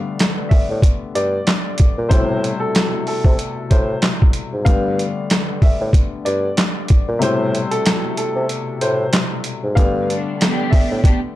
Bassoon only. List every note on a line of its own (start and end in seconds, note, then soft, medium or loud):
0.70 0.81 A2 medium
1.15 1.41 G2 loud
1.98 2.08 A#2 medium
2.11 2.51 A2 loud
3.25 3.36 C3 medium
3.71 3.96 A2 loud
4.53 4.64 G#2 medium
4.66 5.07 G2 loud
5.81 5.91 A2 medium
6.26 6.51 G2 loud
7.08 7.19 A#2 medium
7.22 7.62 A2 loud
8.36 8.47 C3 medium
8.81 9.07 A2 loud
9.64 9.74 G#2 medium
9.77 10.17 G2 loud
10.91 11.02 A2 medium